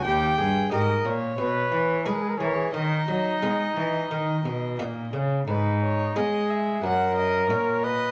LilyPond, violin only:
\new Staff \with { instrumentName = "Violin" } { \time 4/4 \key gis \minor \tempo 4 = 89 g''4 dis''8 cis''4. b'8 cis''8 | dis''2.~ dis''8 r8 | b'8 cis''8 dis''8 e''8 fis''8 dis''8 cis''8 dis''8 | }